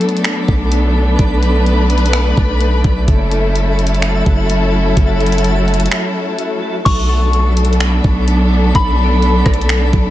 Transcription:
0.00 3.04 F#3 medium
0.00 6.82 A3 medium
0.00 3.04 B3 medium
0.00 3.04 D4 medium
0.00 1.15 A4 medium
0.00 3.04 A4 medium
0.00 3.04 D5 medium
0.00 3.04 B5 medium
0.00 closed hi-hat medium
0.09 closed hi-hat medium
0.17 closed hi-hat medium
0.24 finger snap loud
0.24 closed hi-hat medium
0.48 1.16 B1 loud
0.48 kick loud
0.72 closed hi-hat medium
1.19 2.33 B1 loud
1.19 3.06 B4 medium
1.19 kick loud
1.19 closed hi-hat medium
1.43 closed hi-hat medium
1.66 closed hi-hat medium
1.90 closed hi-hat medium
1.98 closed hi-hat medium
2.06 closed hi-hat medium
2.13 finger snap loud
2.13 closed hi-hat medium
2.37 2.83 B1 loud
2.37 kick medium
2.61 closed hi-hat medium
2.84 3.07 B1 loud
2.84 kick medium
3.08 4.22 F#1 loud
3.08 6.82 F#3 medium
3.08 6.82 C#4 medium
3.08 6.82 E4 medium
3.08 6.82 F#4 medium
3.08 6.82 A4 medium
3.08 6.82 E5 medium
3.08 6.82 A5 medium
3.08 kick loud
3.08 closed hi-hat medium
3.31 closed hi-hat medium
3.55 closed hi-hat medium
3.79 closed hi-hat medium
3.87 closed hi-hat medium
3.95 closed hi-hat medium
4.02 finger snap loud
4.02 closed hi-hat medium
4.26 4.94 F#1 loud
4.26 kick medium
4.50 closed hi-hat medium
4.97 5.88 F#1 loud
4.97 kick loud
4.97 closed hi-hat medium
5.20 closed hi-hat soft
5.26 closed hi-hat medium
5.32 closed hi-hat medium
5.38 closed hi-hat medium
5.44 closed hi-hat medium
5.68 closed hi-hat soft
5.74 closed hi-hat medium
5.80 closed hi-hat medium
5.86 closed hi-hat medium
5.91 finger snap loud
5.91 closed hi-hat medium
6.39 closed hi-hat medium
6.85 8.00 B1 loud
6.85 10.10 F#3 medium
6.85 10.10 A3 medium
6.85 10.10 B3 medium
6.85 10.10 D4 medium
6.85 10.10 A4 medium
6.85 10.10 D5 medium
6.85 10.10 B5 medium
6.85 8.23 C#6 loud
6.85 kick loud
6.85 closed hi-hat medium
6.85 crash loud
7.33 closed hi-hat medium
7.57 closed hi-hat medium
7.65 closed hi-hat medium
7.73 closed hi-hat soft
7.80 finger snap loud
7.80 closed hi-hat medium
8.04 8.72 B1 loud
8.04 kick loud
8.28 closed hi-hat medium
8.75 9.43 B1 loud
8.75 10.10 B5 loud
8.75 kick loud
8.75 closed hi-hat medium
9.22 closed hi-hat medium
9.46 9.91 B1 loud
9.46 kick loud
9.46 cross-stick loud
9.46 closed hi-hat medium
9.54 closed hi-hat medium
9.61 closed hi-hat soft
9.69 finger snap loud
9.69 closed hi-hat medium
9.93 10.10 B1 loud
9.93 kick loud

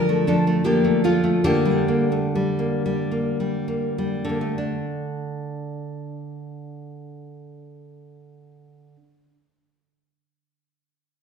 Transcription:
0.00 1.40 D3 medium
0.00 0.26 F3 medium
0.00 0.27 D4 medium
0.00 0.27 A#4 loud
0.09 0.46 A3 medium
0.27 0.63 F3 medium
0.27 0.63 D4 medium
0.27 0.64 A4 loud
0.47 0.66 A3 medium
0.64 1.03 F3 medium
0.64 1.02 A#3 loud
0.64 1.03 G4 loud
0.84 1.04 A3 medium
1.04 1.45 F3 medium
1.04 1.22 A3 medium
1.04 1.43 F4 loud
1.24 1.45 A3 medium
1.44 4.23 D3 loud
1.44 1.87 A#3 loud
1.44 2.79 G4 loud
1.65 2.34 G3 medium
1.88 2.11 A#3 medium
2.12 2.58 A3 medium
2.35 2.84 G3 medium
2.59 3.10 A#3 medium
2.86 3.39 G3 medium
3.11 3.67 A#3 medium
3.40 3.97 G3 medium
3.68 4.28 A#3 medium
3.98 4.57 G3 medium
4.25 8.96 D3 medium
4.29 4.41 A#3 medium
4.41 9.12 A3 medium
4.58 9.29 D4 medium

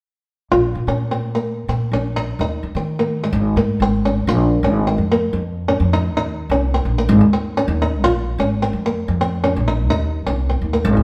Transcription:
0.51 0.73 A#1 medium
0.51 0.70 F4 medium
0.75 0.86 A#2 medium
0.87 1.65 A#2 medium
0.87 1.07 C#4 medium
1.11 1.30 C4 medium
1.35 1.53 A#3 medium
1.68 1.90 A#2 medium
1.68 1.88 C4 medium
1.92 2.35 A#1 medium
1.92 2.12 C#4 medium
2.16 muted nylon-string guitar stroke medium
2.39 2.61 D#2 medium
2.39 2.59 D#4 medium
2.63 2.74 D#3 medium
2.75 3.30 D#3 medium
2.75 2.95 C4 medium
2.99 3.18 A#3 medium
3.24 3.42 G#3 medium
3.33 3.55 G#1 medium
3.56 3.78 G#2 medium
3.56 3.76 A#3 medium
3.80 4.23 G#1 medium
3.80 4.00 C4 medium
4.05 4.24 C#4 medium
4.27 4.60 A#1 medium
4.27 4.47 F4 medium
4.63 4.95 G#1 medium
4.63 4.83 C#4 medium
4.87 5.06 C4 medium
4.98 5.31 F2 medium
5.12 5.30 A#3 medium
5.33 5.76 F2 medium
5.68 5.87 C#4 medium
5.80 6.14 F2 medium
5.93 6.12 D#4 medium
6.14 6.48 D#2 medium
6.14 6.35 D#4 medium
6.50 6.82 C2 medium
6.50 6.70 C#4 medium
6.74 6.93 C4 medium
6.85 7.07 A#1 medium
6.98 7.17 A#3 medium
7.09 7.20 G#1 loud
7.21 7.64 D#2 medium
7.33 7.52 C4 medium
7.57 7.76 C#4 medium
7.68 8.03 D#2 medium
7.82 8.00 D#4 medium
8.03 8.36 A#1 medium
8.03 8.22 F4 medium
8.38 8.71 G#1 medium
8.38 8.58 C#4 medium
8.62 8.81 C4 medium
8.73 9.06 F2 medium
8.86 9.05 A#3 medium
9.08 9.58 F2 medium
9.21 9.40 C4 medium
9.44 9.63 C#4 medium
9.56 9.90 A#1 medium
9.68 9.86 D#4 medium
9.90 10.23 D#2 medium
9.90 10.09 D#4 medium
10.27 10.59 C2 medium
10.27 10.45 C#4 medium
10.49 10.68 C4 medium
10.62 10.83 D#2 medium
10.73 10.92 A#3 medium
10.85 10.96 G#1 loud
10.97 11.03 D#2 medium

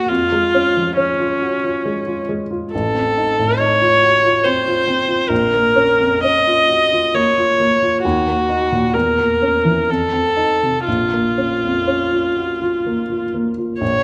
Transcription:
0.00 0.12 A#2 soft
0.00 0.12 A#3 soft
0.00 0.12 C#4 soft
0.00 0.10 F#4 medium
0.00 0.12 F#4 soft
0.00 0.12 G#4 soft
0.09 2.69 F2 soft
0.09 0.96 F4 medium
0.32 0.67 G#3 soft
0.54 0.89 C#4 soft
0.77 1.11 F3 soft
0.96 2.26 C#4 soft
0.96 1.32 C#4 soft
1.20 1.54 F4 soft
1.42 1.63 F#4 soft
1.64 1.99 F4 soft
1.85 2.20 G#3 soft
2.07 2.42 F4 soft
2.29 2.64 G#3 soft
2.51 2.73 F4 soft
2.72 5.28 A1 soft
2.72 3.60 A4 medium
2.95 3.29 C4 soft
3.17 3.51 D#4 soft
3.39 3.73 A2 soft
3.58 3.94 D#4 soft
3.58 4.45 C#5 medium
3.82 4.15 F4 soft
4.03 4.24 F#4 soft
4.25 4.58 F4 soft
4.44 4.79 C4 soft
4.44 5.30 C5 soft
4.68 5.01 F4 soft
4.87 5.22 C4 soft
5.09 5.31 F4 soft
5.28 7.99 A#1 soft
5.28 6.23 A#4 medium
5.54 5.92 A#3 soft
5.76 6.15 C#4 soft
6.00 6.38 F2 soft
6.23 6.61 C#4 soft
6.23 7.16 D#5 medium
6.47 6.83 F4 soft
6.69 6.92 F#4 soft
6.93 7.28 F4 soft
7.14 7.50 A#3 soft
7.14 8.02 C#5 medium
7.38 7.73 F4 soft
7.60 7.95 A#3 soft
7.83 8.04 F4 soft
8.02 8.92 D#2 soft
8.02 8.95 F#4 medium
8.28 8.63 A#3 soft
8.49 8.85 D#4 soft
8.72 8.95 A#2 soft
8.94 9.86 E2 soft
8.94 9.91 A#4 soft
9.18 9.55 A#3 soft
9.42 9.79 C#4 soft
9.65 9.88 E3 soft
9.89 10.84 F2 soft
9.89 10.85 A4 medium
10.13 10.52 C4 soft
10.37 10.76 D#4 soft
10.63 10.87 C3 soft
10.86 13.78 A#1 soft
10.86 13.29 F4 soft
11.13 11.53 A#3 soft
11.38 11.78 C#4 soft
11.65 12.03 F2 soft
11.87 12.26 C#4 soft
12.13 12.51 F4 soft
12.37 12.60 F#4 soft
12.62 13.00 F4 soft
12.86 13.24 A#3 soft
13.10 13.49 F4 soft
13.34 13.72 A#3 soft
13.58 13.81 F4 soft
13.80 14.03 A#1 soft
13.80 14.03 C#5 medium

